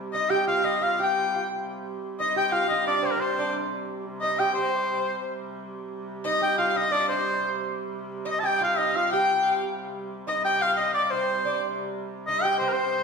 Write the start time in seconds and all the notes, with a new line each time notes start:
Already playing: C3 G3
0.13 D#4 D#5
0.30 G4 G5
0.47 F4 F5
0.64 D#4 D#5
0.80 F4 F5
0.99 G4 G5
1.35 F4
1.49 C3 G3
2.19 D#4 D#5
2.36 G4 G5
2.51 F4 F5
2.69 D#4 D#5
2.86 D4 D5
3.03 C4 C5
3.11 A#4
3.16 C4 C5
3.20 C5
3.37 D4 D5
4.21 D#4 D#5
4.38 G4 G5
4.54 C4 C5
4.63 D5
4.69 C5
4.76 D5
4.85 C5
4.93 D5
5.00 C5
5.57 C3 G3
6.24 D#4 D#5
6.41 G4 G5
6.58 F4 F5
6.68 F5
6.76 D#4 D#5
6.91 D4 D5
7.08 C4 C5
8.25 D#4 D#5
8.31 D#5
8.39 G4 G5 A5
8.46 G5
8.60 F4 F5
8.77 D#4 D#5
8.96 F4 F5
9.10 G4 G5
9.43 F5
9.61 C3 G3
10.27 D#4 D#5
10.44 G4 G5
10.60 F4 F5
10.74 D#5 F5
10.79 D#4
10.93 D5
11.05 D5
11.10 C4 C5
11.45 D4 D5
12.27 D#4 D#5
12.40 A4 G5
12.45 G4 G5
12.59 C4 C5
12.68 A#4
12.73 C4 C5